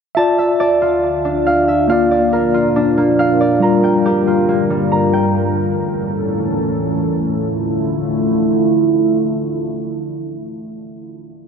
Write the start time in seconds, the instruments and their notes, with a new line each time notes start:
0.15 ambient pad D2 D3 F4 D5, tine electric piano F4 D5 E5, harp A5
0.38 harp E5
0.60 harp D5
0.82 harp F4
1.25 harp D4
1.46 harp F5
1.68 harp E5
1.88 ambient pad A#2 F3 D4 A#4, tine electric piano A#3 F4 D5, harp F5
2.11 harp D5
2.33 harp A#4
2.54 harp F4
2.76 harp D4
2.97 harp A#3
3.19 harp F5
3.41 harp D5
3.60 ambient pad G2 D3 F4 A#4, tine electric piano G3 F4 A#4, harp A#5
3.84 harp G5
4.06 harp G4
4.27 harp F4
4.49 harp A#3
4.70 harp G3
4.92 harp A#5
5.13 harp G5
5.35 ambient pad A2 E3 C#4 A4
7.07 ambient pad D3 A3 E4 F4